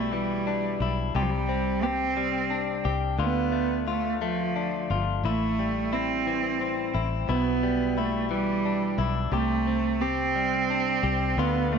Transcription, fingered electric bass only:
0.00 0.76 B1 medium
0.80 1.13 B1 medium
1.15 2.81 C2 medium
2.85 3.17 C2 medium
3.19 4.85 D2 medium
4.90 5.22 G1 medium
5.24 6.90 A1 medium
6.94 7.26 A1 medium
7.29 8.95 B1 medium
8.98 9.31 B1 medium
9.32 10.99 C2 medium
11.03 11.35 C2 medium
11.37 11.79 D2 medium

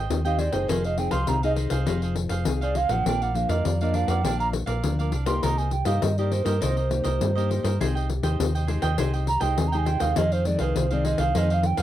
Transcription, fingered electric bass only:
0.10 0.48 D#2 medium
0.53 0.66 F#1 medium
0.69 1.07 F1 medium
1.12 1.25 C2 medium
1.29 1.66 C2 medium
1.71 1.84 C2 medium
1.88 2.25 F1 medium
2.30 2.43 F1 medium
2.46 2.84 C2 medium
2.89 3.03 A1 medium
3.06 3.44 A#1 medium
3.49 3.62 F2 medium
3.65 4.03 F2 medium
4.08 4.21 F2 medium
4.24 4.62 A#1 loud
4.67 4.81 A#1 medium
4.84 5.11 D2 medium
5.13 5.40 C2 medium
5.43 5.81 C2 medium
5.86 5.99 G2 medium
6.03 6.40 G2 medium
6.46 6.59 G2 medium
6.63 7.00 C2 medium
7.05 7.18 C2 medium
7.22 7.59 G2 medium
7.64 7.77 G2 medium
7.81 8.18 C2 medium
8.23 8.36 D#2 medium
8.40 8.77 D#2 medium
8.83 8.96 D#2 medium
8.99 9.36 C2 medium
9.42 9.55 C2 medium
9.58 9.96 D#2 medium
10.01 10.14 D#2 medium
10.18 10.55 F2 loud
10.60 10.73 C2 medium
10.76 11.14 C2 medium
11.18 11.32 C2 medium
11.35 11.73 F2 medium
11.78 11.82 F2 medium

